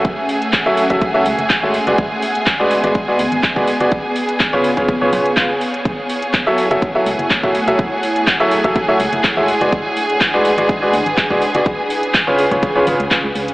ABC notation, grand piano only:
X:1
M:4/4
L:1/16
Q:"Swing 16ths" 1/4=124
K:F#m
V:1 name="Grand piano"
z4 z [F,FAce] z [F,FAce] z [F,FAce] z3 [G,FAce] z [G,FGBd] | z4 z [G,FGBd] z [G,FGBd] z [G,FGBd] z3 [G,FGBd] z [FGBd] | z4 z [C,^EGBc] z [C,EGBc] z [C,EGBc] [C,EGBc] z [C,EGB^e] z3 | z4 z [F,FAce] z [F,FAce] z [F,FAce] z3 [F,FAce] z [F,FAce] |
z4 z [F,FAce] z [F,FAce] z [F,FAce] z3 [G,FAce] z [G,FGBd] | z4 z [G,FGBd] z [G,FGBd] z [G,FGBd] z3 [G,FGBd] z [FGBd] | z4 z [C,^EGBc] z [C,EGBc] z [C,EGBc] [C,EGBc] z [C,EGB^e] z3 |]